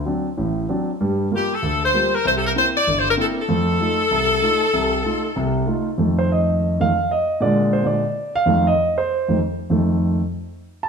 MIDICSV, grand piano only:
0, 0, Header, 1, 2, 480
1, 0, Start_track
1, 0, Tempo, 311203
1, 1529, Time_signature, 4, 2, 24, 8
1, 16795, End_track
2, 0, Start_track
2, 0, Title_t, "Grand piano"
2, 0, Program_c, 0, 0
2, 88, Note_on_c, 0, 54, 41
2, 98, Note_on_c, 0, 60, 39
2, 102, Note_on_c, 0, 62, 48
2, 406, Note_off_c, 0, 54, 0
2, 411, Note_off_c, 0, 60, 0
2, 413, Note_off_c, 0, 62, 0
2, 576, Note_on_c, 0, 45, 55
2, 579, Note_on_c, 0, 33, 53
2, 986, Note_off_c, 0, 45, 0
2, 987, Note_off_c, 0, 33, 0
2, 1063, Note_on_c, 0, 60, 40
2, 1064, Note_on_c, 0, 54, 47
2, 1072, Note_on_c, 0, 62, 52
2, 1374, Note_off_c, 0, 60, 0
2, 1375, Note_off_c, 0, 54, 0
2, 1379, Note_off_c, 0, 62, 0
2, 1549, Note_on_c, 0, 43, 57
2, 1555, Note_on_c, 0, 55, 59
2, 1953, Note_off_c, 0, 43, 0
2, 1956, Note_off_c, 0, 55, 0
2, 2023, Note_on_c, 0, 55, 42
2, 2032, Note_on_c, 0, 58, 42
2, 2037, Note_on_c, 0, 65, 47
2, 2335, Note_off_c, 0, 55, 0
2, 2340, Note_off_c, 0, 58, 0
2, 2342, Note_off_c, 0, 65, 0
2, 2505, Note_on_c, 0, 38, 53
2, 2912, Note_off_c, 0, 38, 0
2, 2987, Note_on_c, 0, 55, 47
2, 2994, Note_on_c, 0, 58, 42
2, 3000, Note_on_c, 0, 65, 51
2, 3298, Note_off_c, 0, 55, 0
2, 3302, Note_off_c, 0, 58, 0
2, 3304, Note_off_c, 0, 65, 0
2, 3467, Note_on_c, 0, 36, 61
2, 3874, Note_off_c, 0, 36, 0
2, 3945, Note_on_c, 0, 58, 45
2, 3950, Note_on_c, 0, 60, 38
2, 3953, Note_on_c, 0, 64, 46
2, 4257, Note_off_c, 0, 58, 0
2, 4260, Note_off_c, 0, 60, 0
2, 4261, Note_off_c, 0, 64, 0
2, 4431, Note_on_c, 0, 31, 53
2, 4837, Note_off_c, 0, 31, 0
2, 4895, Note_on_c, 0, 58, 48
2, 4901, Note_on_c, 0, 60, 44
2, 4912, Note_on_c, 0, 64, 53
2, 5213, Note_off_c, 0, 58, 0
2, 5216, Note_off_c, 0, 60, 0
2, 5222, Note_off_c, 0, 64, 0
2, 5375, Note_on_c, 0, 57, 62
2, 5377, Note_on_c, 0, 41, 60
2, 5788, Note_off_c, 0, 57, 0
2, 5789, Note_off_c, 0, 41, 0
2, 5850, Note_on_c, 0, 57, 43
2, 5861, Note_on_c, 0, 63, 42
2, 5863, Note_on_c, 0, 65, 48
2, 6172, Note_off_c, 0, 57, 0
2, 6177, Note_off_c, 0, 63, 0
2, 6178, Note_off_c, 0, 65, 0
2, 6336, Note_on_c, 0, 36, 58
2, 6750, Note_off_c, 0, 36, 0
2, 6814, Note_on_c, 0, 57, 44
2, 6822, Note_on_c, 0, 63, 44
2, 6827, Note_on_c, 0, 65, 52
2, 7134, Note_off_c, 0, 57, 0
2, 7138, Note_off_c, 0, 63, 0
2, 7141, Note_off_c, 0, 65, 0
2, 7303, Note_on_c, 0, 48, 58
2, 7304, Note_on_c, 0, 36, 60
2, 7714, Note_off_c, 0, 36, 0
2, 7714, Note_off_c, 0, 48, 0
2, 7784, Note_on_c, 0, 57, 43
2, 7787, Note_on_c, 0, 63, 42
2, 7791, Note_on_c, 0, 65, 48
2, 8100, Note_off_c, 0, 57, 0
2, 8101, Note_off_c, 0, 63, 0
2, 8103, Note_off_c, 0, 65, 0
2, 8264, Note_on_c, 0, 48, 58
2, 8270, Note_on_c, 0, 36, 59
2, 8674, Note_off_c, 0, 48, 0
2, 8678, Note_off_c, 0, 36, 0
2, 8735, Note_on_c, 0, 57, 46
2, 8738, Note_on_c, 0, 63, 42
2, 8744, Note_on_c, 0, 65, 50
2, 9055, Note_off_c, 0, 57, 0
2, 9056, Note_off_c, 0, 63, 0
2, 9060, Note_off_c, 0, 65, 0
2, 9220, Note_on_c, 0, 41, 45
2, 9232, Note_on_c, 0, 51, 42
2, 9237, Note_on_c, 0, 57, 51
2, 9540, Note_on_c, 0, 72, 76
2, 9704, Note_off_c, 0, 72, 0
2, 9748, Note_on_c, 0, 75, 60
2, 10451, Note_off_c, 0, 75, 0
2, 10466, Note_off_c, 0, 41, 0
2, 10470, Note_off_c, 0, 51, 0
2, 10477, Note_off_c, 0, 57, 0
2, 10489, Note_on_c, 0, 41, 41
2, 10493, Note_on_c, 0, 51, 40
2, 10500, Note_on_c, 0, 57, 47
2, 10504, Note_on_c, 0, 77, 87
2, 10646, Note_off_c, 0, 41, 0
2, 10648, Note_off_c, 0, 51, 0
2, 10652, Note_off_c, 0, 57, 0
2, 10938, Note_off_c, 0, 77, 0
2, 10973, Note_on_c, 0, 75, 66
2, 11412, Note_off_c, 0, 75, 0
2, 11420, Note_on_c, 0, 46, 54
2, 11431, Note_on_c, 0, 50, 46
2, 11442, Note_on_c, 0, 74, 71
2, 11447, Note_on_c, 0, 56, 59
2, 11922, Note_on_c, 0, 72, 69
2, 12053, Note_off_c, 0, 74, 0
2, 12055, Note_off_c, 0, 46, 0
2, 12060, Note_off_c, 0, 50, 0
2, 12069, Note_off_c, 0, 56, 0
2, 12093, Note_on_c, 0, 46, 44
2, 12094, Note_off_c, 0, 72, 0
2, 12099, Note_on_c, 0, 50, 39
2, 12104, Note_on_c, 0, 56, 42
2, 12132, Note_on_c, 0, 74, 61
2, 12365, Note_off_c, 0, 46, 0
2, 12368, Note_off_c, 0, 50, 0
2, 12371, Note_off_c, 0, 56, 0
2, 12840, Note_off_c, 0, 74, 0
2, 12887, Note_on_c, 0, 77, 92
2, 13045, Note_on_c, 0, 41, 52
2, 13054, Note_on_c, 0, 51, 46
2, 13062, Note_on_c, 0, 57, 56
2, 13328, Note_off_c, 0, 77, 0
2, 13374, Note_on_c, 0, 75, 79
2, 13403, Note_off_c, 0, 41, 0
2, 13408, Note_off_c, 0, 51, 0
2, 13412, Note_off_c, 0, 57, 0
2, 13811, Note_off_c, 0, 75, 0
2, 13846, Note_on_c, 0, 72, 77
2, 14320, Note_on_c, 0, 41, 43
2, 14322, Note_on_c, 0, 51, 39
2, 14334, Note_on_c, 0, 57, 44
2, 14453, Note_off_c, 0, 72, 0
2, 14479, Note_off_c, 0, 41, 0
2, 14479, Note_off_c, 0, 51, 0
2, 14486, Note_off_c, 0, 57, 0
2, 14958, Note_on_c, 0, 41, 47
2, 14964, Note_on_c, 0, 51, 41
2, 14976, Note_on_c, 0, 57, 54
2, 15705, Note_off_c, 0, 41, 0
2, 15707, Note_off_c, 0, 51, 0
2, 15714, Note_off_c, 0, 57, 0
2, 16706, Note_on_c, 0, 81, 76
2, 16795, Note_off_c, 0, 81, 0
2, 16795, End_track
0, 0, End_of_file